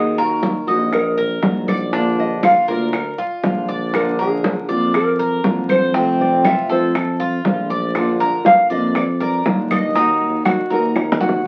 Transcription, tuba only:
0, 0, Header, 1, 2, 480
1, 0, Start_track
1, 0, Tempo, 501253
1, 1850, Time_signature, 4, 2, 24, 8
1, 10986, End_track
2, 0, Start_track
2, 0, Title_t, "Tuba"
2, 0, Program_c, 0, 58
2, 0, Note_on_c, 0, 39, 90
2, 587, Note_off_c, 0, 39, 0
2, 648, Note_on_c, 0, 34, 94
2, 1331, Note_off_c, 0, 34, 0
2, 1365, Note_on_c, 0, 34, 97
2, 2506, Note_off_c, 0, 34, 0
2, 2571, Note_on_c, 0, 38, 79
2, 3000, Note_off_c, 0, 38, 0
2, 3289, Note_on_c, 0, 34, 86
2, 4429, Note_off_c, 0, 34, 0
2, 4495, Note_on_c, 0, 41, 85
2, 5176, Note_off_c, 0, 41, 0
2, 5212, Note_on_c, 0, 41, 93
2, 6351, Note_off_c, 0, 41, 0
2, 6416, Note_on_c, 0, 41, 91
2, 7096, Note_off_c, 0, 41, 0
2, 7136, Note_on_c, 0, 34, 97
2, 8013, Note_off_c, 0, 34, 0
2, 8334, Note_on_c, 0, 41, 85
2, 9016, Note_off_c, 0, 41, 0
2, 9055, Note_on_c, 0, 39, 91
2, 10192, Note_off_c, 0, 39, 0
2, 10249, Note_on_c, 0, 39, 94
2, 10932, Note_off_c, 0, 39, 0
2, 10986, End_track
0, 0, End_of_file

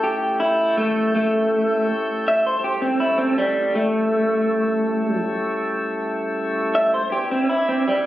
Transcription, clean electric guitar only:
0, 0, Header, 1, 2, 480
1, 0, Start_track
1, 0, Tempo, 744417
1, 1682, Time_signature, 12, 3, 24, 8
1, 5198, End_track
2, 0, Start_track
2, 0, Title_t, "Clean electric guitar"
2, 0, Program_c, 0, 27
2, 22, Note_on_c, 0, 67, 77
2, 246, Note_off_c, 0, 67, 0
2, 257, Note_on_c, 0, 64, 93
2, 483, Note_off_c, 0, 64, 0
2, 500, Note_on_c, 0, 57, 79
2, 724, Note_off_c, 0, 57, 0
2, 744, Note_on_c, 0, 57, 78
2, 1199, Note_off_c, 0, 57, 0
2, 1470, Note_on_c, 0, 76, 86
2, 1573, Note_off_c, 0, 76, 0
2, 1589, Note_on_c, 0, 72, 73
2, 1692, Note_off_c, 0, 72, 0
2, 1703, Note_on_c, 0, 67, 77
2, 1809, Note_off_c, 0, 67, 0
2, 1816, Note_on_c, 0, 60, 73
2, 1926, Note_off_c, 0, 60, 0
2, 1935, Note_on_c, 0, 64, 76
2, 2045, Note_off_c, 0, 64, 0
2, 2051, Note_on_c, 0, 60, 67
2, 2163, Note_off_c, 0, 60, 0
2, 2180, Note_on_c, 0, 55, 84
2, 2404, Note_off_c, 0, 55, 0
2, 2420, Note_on_c, 0, 57, 82
2, 3345, Note_off_c, 0, 57, 0
2, 4352, Note_on_c, 0, 76, 91
2, 4454, Note_off_c, 0, 76, 0
2, 4475, Note_on_c, 0, 72, 75
2, 4576, Note_off_c, 0, 72, 0
2, 4592, Note_on_c, 0, 67, 77
2, 4694, Note_off_c, 0, 67, 0
2, 4716, Note_on_c, 0, 60, 74
2, 4816, Note_off_c, 0, 60, 0
2, 4832, Note_on_c, 0, 64, 77
2, 4935, Note_off_c, 0, 64, 0
2, 4956, Note_on_c, 0, 60, 67
2, 5056, Note_off_c, 0, 60, 0
2, 5079, Note_on_c, 0, 55, 72
2, 5198, Note_off_c, 0, 55, 0
2, 5198, End_track
0, 0, End_of_file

